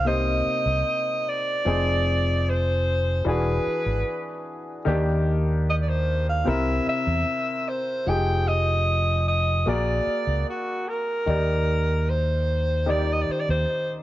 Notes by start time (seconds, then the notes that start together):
Already playing: C2 C3 A#3 D#4 D5
0.05 C3 A#3 D#4 C5 D#5
0.65 C2
1.29 D5
1.65 F1 F3 C4 D#4 G#4
2.49 C5
3.25 E1 E3 D4 F#4 G#4 B4
3.67 muted fingered electric bass stroke
3.86 G#1
4.85 D#2 D#3 A#3 D4 G4
5.69 D#5
5.82 D5
5.88 C5
6.29 F5
6.44 C2 C3 C4 E4 A#4
6.49 E5
6.87 E5, muted fingered electric bass stroke
7.07 E2
7.68 C5
8.06 F1 F3 D#4 G4 G#4 G5
8.48 D#5
9.28 D#5
9.66 A#1 A#3 F#4 G#4 A#4 D5
10.07 muted fingered electric bass stroke
10.27 C#2
10.49 F#4
10.88 A#4
11.26 D#2 D#3 D#4 G4 D5
12.10 C5
12.86 D#3 D#4 G4 D5
13.12 D#5
13.21 D5
13.29 C5, muted fingered electric bass stroke
13.40 D5
13.49 D#2 C5